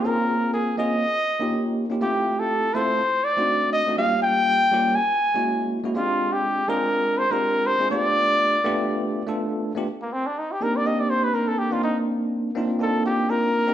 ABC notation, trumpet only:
X:1
M:4/4
L:1/16
Q:"Swing 16ths" 1/4=122
K:Gphr
V:1 name="Trumpet"
B4 A2 e8 z2 | G3 =A3 c4 d4 e2 | f2 g6 a6 z2 | F3 G3 B4 c B3 c2 |
d12 z4 | [K:Cdor] z B, C D E G B d e d c =B _B A G F | E2 z6 A2 G2 B4 |]